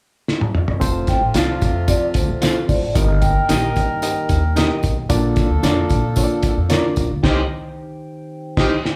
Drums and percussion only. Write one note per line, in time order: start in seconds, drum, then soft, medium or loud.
0.28 snare medium
0.41 high tom medium
0.55 mid tom medium
0.68 floor tom medium
0.81 kick loud
0.81 closed hi-hat loud
0.81 tambourine medium
1.07 kick medium
1.07 snare soft
1.07 closed hi-hat medium
1.07 tambourine medium
1.34 snare loud
1.34 closed hi-hat loud
1.34 tambourine medium
1.61 kick medium
1.61 closed hi-hat medium
1.61 tambourine medium
1.88 kick medium
1.88 closed hi-hat medium
1.88 tambourine medium
2.14 kick medium
2.14 closed hi-hat medium
2.14 tambourine medium
2.42 snare loud
2.42 closed hi-hat medium
2.42 tambourine medium
2.69 kick medium
2.69 open hi-hat soft
2.69 tambourine medium
2.95 kick loud
2.95 closed hi-hat loud
2.95 tambourine medium
3.22 kick medium
3.22 closed hi-hat medium
3.22 tambourine medium
3.49 snare loud
3.49 closed hi-hat loud
3.49 tambourine medium
3.76 kick medium
3.76 closed hi-hat medium
3.76 tambourine soft
4.02 closed hi-hat medium
4.02 tambourine medium
4.29 kick medium
4.29 closed hi-hat medium
4.29 tambourine medium
4.56 snare loud
4.56 closed hi-hat medium
4.56 tambourine medium
4.83 kick medium
4.83 closed hi-hat medium
4.83 tambourine soft
5.10 kick loud
5.10 closed hi-hat loud
5.10 tambourine medium
5.36 kick medium
5.36 snare soft
5.36 closed hi-hat soft
5.36 tambourine medium
5.63 snare medium
5.63 closed hi-hat medium
5.63 tambourine medium
5.90 kick medium
5.90 closed hi-hat medium
5.90 tambourine soft
6.16 kick medium
6.16 closed hi-hat medium
6.16 tambourine medium
6.43 kick medium
6.43 closed hi-hat medium
6.43 tambourine medium
6.70 snare loud
6.70 closed hi-hat medium
6.70 tambourine medium
6.96 kick medium
6.96 closed hi-hat medium
6.96 tambourine medium
7.23 kick loud
7.23 snare loud
7.23 crash medium
8.57 kick loud
8.57 snare loud
8.57 crash medium
8.85 snare medium